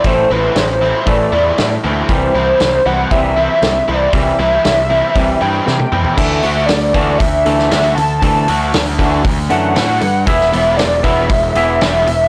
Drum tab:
CC |----------------|----------------|----------------|x---------------|
HH |o---o---o---o---|o---o---o---o---|o---o---o-------|--o-o-o-o-o-o-o-|
SD |----o-------o---|----o-------o---|----o-------o---|----o------oo---|
T1 |----------------|----------------|-------------o--|----------------|
T2 |----------------|----------------|--------------o-|----------------|
FT |----------------|----------------|---------------o|----------------|
BD |o-------o-------|o-------o-------|o-------o-------|o-----o-o-------|

CC |----------------|----------------|
HH |o-o-o-o-o-o-o-o-|o-o-o-o-o-o-o-o-|
SD |----o-------o---|-o--o-------o---|
T1 |----------------|----------------|
T2 |----------------|----------------|
FT |----------------|----------------|
BD |o-----o-o-------|o-----o-o-------|